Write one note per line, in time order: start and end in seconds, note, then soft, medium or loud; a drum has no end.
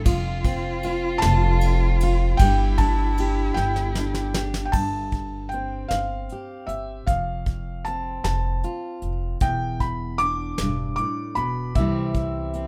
0.05 1.19 F1 loud
0.05 1.22 F2 medium
0.05 0.83 F4 medium
0.05 2.40 F4 loud
0.05 kick loud
0.05 ride medium
0.44 1.62 C4 medium
0.44 kick medium
0.44 ride medium
0.83 2.01 F4 medium
0.83 ride medium
1.18 2.41 A5 loud
1.18 snare loud
1.18 ride medium
1.23 2.36 F1 loud
1.23 muted steel-string acoustic guitar stroke medium
1.61 2.36 C4 medium
1.61 ride medium
2.00 2.36 F4 medium
2.00 ride medium
2.37 3.52 G1 medium
2.37 3.57 G2 medium
2.37 4.36 E4 loud
2.37 3.18 G4 medium
2.37 2.75 G5 loud
2.37 kick loud
2.37 ride medium
2.78 3.96 D4 medium
2.78 3.58 A5 loud
2.78 kick medium
2.78 ride medium
3.17 4.35 G4 medium
3.17 ride medium
3.54 4.69 G1 loud
3.54 4.39 G5 medium
3.54 muted steel-string acoustic guitar stroke medium
3.54 snare medium
3.76 snare medium
3.95 4.70 D4 medium
3.95 snare medium
4.14 snare medium
4.34 4.74 D4 medium
4.34 4.69 G4 medium
4.34 snare medium
4.54 snare medium
4.65 4.73 G5 medium
4.72 5.86 G1 medium
4.72 5.91 G2 medium
4.72 5.47 A5 medium
4.72 kick medium
4.72 crash medium
5.12 kick medium
5.12 closed hi-hat soft
5.49 5.90 G5 medium
5.49 closed hi-hat soft
5.54 7.04 C4 medium
5.88 6.27 G1 medium
5.88 6.70 F5 medium
5.88 snare medium
5.88 closed hi-hat medium
5.93 muted steel-string acoustic guitar stroke medium
6.29 7.04 G4 medium
6.29 closed hi-hat soft
6.67 7.05 G1 medium
6.67 7.08 E5 medium
6.67 closed hi-hat soft
7.07 8.20 F1 medium
7.07 8.24 F2 medium
7.07 7.87 F5 medium
7.07 kick medium
7.07 closed hi-hat medium
7.46 kick medium
7.46 closed hi-hat soft
7.85 9.38 C4 medium
7.85 8.23 A5 medium
7.85 closed hi-hat soft
8.24 8.61 F1 medium
8.24 9.08 A5 medium
8.24 muted steel-string acoustic guitar stroke medium
8.24 snare medium
8.24 closed hi-hat medium
8.63 9.37 F4 medium
8.63 closed hi-hat soft
9.02 9.39 F1 medium
9.02 closed hi-hat medium
9.40 10.55 E1 medium
9.40 10.59 E2 medium
9.40 9.82 G5 medium
9.40 kick medium
9.40 closed hi-hat medium
9.80 10.21 B5 medium
9.80 kick medium
9.80 closed hi-hat soft
10.18 11.72 D4 medium
10.18 10.94 D6 loud
10.18 closed hi-hat soft
10.58 10.96 E1 medium
10.58 10.99 G2 medium
10.58 snare medium
10.58 closed hi-hat medium
10.96 11.37 A2 medium
10.96 11.33 D6 medium
10.96 closed hi-hat soft
11.35 11.74 E1 medium
11.35 11.76 B2 medium
11.35 11.76 B5 medium
11.35 closed hi-hat soft
11.75 12.67 C2 medium
11.75 12.67 C3 medium
11.75 12.67 E3 medium
11.75 12.67 G3 medium
11.75 12.54 C4 medium
11.75 12.67 E5 medium
11.75 kick medium
11.75 closed hi-hat medium
11.80 12.67 E4 medium
12.14 kick medium
12.14 closed hi-hat soft
12.54 12.67 C4 medium
12.54 closed hi-hat soft